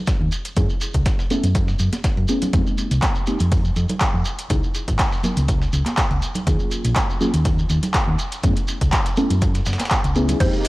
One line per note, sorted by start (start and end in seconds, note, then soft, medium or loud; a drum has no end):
0.07 kick loud
0.07 snare loud
0.07 closed hi-hat medium
0.07 shekere soft
0.21 0.28 D#2 medium
0.32 closed hi-hat medium
0.32 shekere medium
0.45 closed hi-hat soft
0.45 shekere soft
0.56 0.65 F#2 loud
0.56 0.67 A3 medium
0.56 0.67 B3 medium
0.56 0.67 C#4 medium
0.56 0.67 E4 medium
0.56 0.67 G#4 medium
0.56 kick loud
0.56 closed hi-hat medium
0.56 shekere medium
0.70 shekere soft
0.81 closed hi-hat medium
0.81 shekere loud
0.94 1.01 C#2 medium
0.94 kick medium
0.94 closed hi-hat soft
0.94 shekere soft
1.06 kick loud
1.06 snare loud
1.06 closed hi-hat medium
1.06 shekere soft
1.19 snare soft
1.19 shekere soft
1.30 1.46 A3 medium
1.30 1.46 B3 medium
1.30 1.46 C#4 medium
1.30 1.46 E4 medium
1.30 1.46 A4 loud
1.30 closed hi-hat medium
1.30 high conga medium
1.30 shekere medium
1.43 1.73 F#2 medium
1.43 closed hi-hat soft
1.43 shekere soft
1.55 kick loud
1.55 closed hi-hat medium
1.55 shekere soft
1.68 snare soft
1.68 shekere soft
1.79 1.88 F#2 medium
1.79 closed hi-hat medium
1.79 shekere medium
1.93 snare medium
1.93 closed hi-hat soft
1.93 high conga medium
1.93 shekere soft
2.04 kick loud
2.04 snare loud
2.04 closed hi-hat medium
2.04 shekere soft
2.17 2.24 F#2 medium
2.17 closed hi-hat soft
2.28 2.51 A3 medium
2.28 2.51 B3 medium
2.28 2.51 C#4 medium
2.28 2.51 E4 medium
2.28 2.51 G#4 loud
2.28 closed hi-hat medium
2.28 shekere loud
2.42 closed hi-hat soft
2.42 low conga medium
2.42 shekere soft
2.53 2.61 F2 medium
2.53 3.24 G#3 medium
2.53 3.24 A#3 medium
2.53 3.24 C4 medium
2.53 3.24 D#4 medium
2.53 3.24 G4 medium
2.53 kick loud
2.53 closed hi-hat medium
2.53 shekere soft
2.67 shekere soft
2.78 closed hi-hat medium
2.78 shekere medium
2.91 2.98 C2 medium
2.91 closed hi-hat soft
2.91 shekere soft
3.02 kick loud
3.02 snare loud
3.02 clap loud
3.02 closed hi-hat medium
3.02 shekere soft
3.15 shekere soft
3.26 3.37 G#3 medium
3.26 3.37 A#3 medium
3.26 3.37 C4 medium
3.26 3.37 D#4 medium
3.26 3.37 G4 medium
3.26 closed hi-hat medium
3.26 shekere medium
3.40 3.69 F2 medium
3.40 closed hi-hat soft
3.40 shekere soft
3.52 kick loud
3.52 closed hi-hat medium
3.52 open hi-hat medium
3.52 shekere soft
3.65 shekere soft
3.76 3.84 F2 medium
3.76 closed hi-hat medium
3.76 shekere medium
3.89 closed hi-hat soft
3.89 low conga medium
3.89 shekere soft
4.01 kick loud
4.01 snare loud
4.01 clap loud
4.01 closed hi-hat medium
4.01 shekere soft
4.14 4.21 F2 medium
4.25 closed hi-hat medium
4.25 shekere medium
4.39 closed hi-hat soft
4.39 shekere soft
4.50 4.58 C#2 medium
4.50 4.60 F#3 medium
4.50 4.60 B3 medium
4.50 4.60 D#4 medium
4.50 4.60 E4 medium
4.50 4.60 G#4 medium
4.50 kick loud
4.50 closed hi-hat medium
4.50 shekere medium
4.63 shekere soft
4.75 closed hi-hat medium
4.75 shekere medium
4.88 4.95 G#1 medium
4.88 kick medium
4.88 closed hi-hat soft
4.88 shekere soft
4.99 kick loud
4.99 snare loud
4.99 clap loud
4.99 closed hi-hat medium
4.99 shekere soft
5.12 snare soft
5.12 shekere soft
5.24 5.39 F#3 medium
5.24 5.40 B3 medium
5.24 5.40 D#4 medium
5.24 5.40 E4 medium
5.24 5.40 A#4 medium
5.24 closed hi-hat medium
5.24 high conga medium
5.24 shekere medium
5.37 5.66 C#2 medium
5.37 closed hi-hat soft
5.37 shekere soft
5.48 kick loud
5.48 closed hi-hat medium
5.48 shekere soft
5.62 snare soft
5.62 shekere soft
5.73 5.81 C#2 medium
5.73 closed hi-hat medium
5.73 shekere medium
5.86 snare medium
5.86 clap soft
5.86 closed hi-hat soft
5.86 high conga medium
5.86 shekere soft
5.97 kick loud
5.97 snare loud
5.97 clap loud
5.97 closed hi-hat medium
5.97 shekere soft
6.11 6.18 C#2 medium
6.11 closed hi-hat soft
6.22 closed hi-hat medium
6.22 shekere medium
6.35 closed hi-hat soft
6.35 low conga medium
6.35 shekere soft
6.47 6.55 D#2 loud
6.47 7.18 F#3 medium
6.47 7.18 A#3 medium
6.47 7.18 C#4 medium
6.47 7.18 F4 medium
6.47 7.18 G#4 medium
6.47 kick loud
6.47 closed hi-hat medium
6.47 shekere soft
6.59 shekere soft
6.71 closed hi-hat medium
6.71 shekere medium
6.85 6.92 A#1 medium
6.85 closed hi-hat medium
6.85 closed hi-hat soft
6.85 shekere soft
6.96 kick loud
6.96 snare loud
6.96 clap loud
6.96 closed hi-hat medium
6.96 shekere soft
7.10 shekere soft
7.20 7.31 F#3 medium
7.20 7.31 A#3 medium
7.20 7.31 C#4 medium
7.20 7.31 F4 medium
7.20 7.31 G#4 medium
7.20 shekere medium
7.34 7.63 D#2 medium
7.34 closed hi-hat medium
7.34 shekere soft
7.45 kick loud
7.45 closed hi-hat medium
7.45 open hi-hat medium
7.45 shekere soft
7.59 shekere soft
7.70 7.78 D#2 medium
7.70 closed hi-hat medium
7.70 shekere medium
7.83 closed hi-hat medium
7.83 low conga medium
7.83 shekere soft
7.94 kick loud
7.94 snare loud
7.94 clap loud
7.94 closed hi-hat medium
7.94 shekere soft
8.08 8.15 D#2 medium
8.19 closed hi-hat medium
8.19 shekere medium
8.32 closed hi-hat soft
8.32 shekere soft
8.43 8.52 F#2 medium
8.43 8.54 A3 medium
8.43 8.54 B3 medium
8.43 8.54 C#4 medium
8.43 8.54 E4 medium
8.43 8.54 G#4 medium
8.43 kick loud
8.43 closed hi-hat medium
8.43 shekere soft
8.56 closed hi-hat soft
8.56 shekere soft
8.68 closed hi-hat medium
8.68 shekere medium
8.81 8.88 C#2 medium
8.81 kick medium
8.81 closed hi-hat medium
8.81 shekere soft
8.92 kick loud
8.92 snare loud
8.92 clap loud
8.92 closed hi-hat medium
8.92 shekere soft
9.06 snare soft
9.06 closed hi-hat soft
9.06 shekere soft
9.17 9.33 A3 medium
9.17 9.33 B3 medium
9.17 9.33 C#4 medium
9.17 9.33 E4 medium
9.17 9.33 A4 medium
9.17 closed hi-hat medium
9.17 high conga medium
9.17 shekere medium
9.30 9.59 F#2 medium
9.30 closed hi-hat soft
9.30 closed hi-hat medium
9.30 shekere soft
9.42 kick loud
9.42 closed hi-hat medium
9.42 shekere soft
9.55 snare soft
9.55 closed hi-hat soft
9.55 shekere soft
9.66 9.75 F#1 medium
9.66 snare medium
9.66 closed hi-hat medium
9.66 shekere medium
9.73 snare medium
9.73 closed hi-hat medium
9.80 snare medium
9.80 clap soft
9.80 closed hi-hat soft
9.80 closed hi-hat medium
9.80 high conga medium
9.80 shekere soft
9.85 snare medium
9.85 closed hi-hat medium
9.91 kick loud
9.91 clap loud
9.91 closed hi-hat medium
9.91 shekere medium
10.04 10.33 C#2 medium
10.04 closed hi-hat soft
10.04 shekere soft
10.15 10.37 A3 medium
10.15 10.37 B3 medium
10.15 10.37 C#4 medium
10.15 10.38 E4 medium
10.15 10.38 G#4 loud
10.15 closed hi-hat medium
10.15 shekere medium
10.29 closed hi-hat medium
10.29 low conga medium
10.29 shekere soft
10.40 10.48 F2 loud
10.40 10.68 G#3 medium
10.40 10.68 A#3 medium
10.40 10.68 C4 medium
10.40 10.68 D#4 medium
10.40 10.68 G4 medium
10.40 10.56 C5 medium
10.40 kick loud
10.40 closed hi-hat medium
10.40 crash medium
10.40 shekere soft
10.53 shekere soft
10.64 closed hi-hat medium
10.64 open hi-hat loud
10.64 shekere medium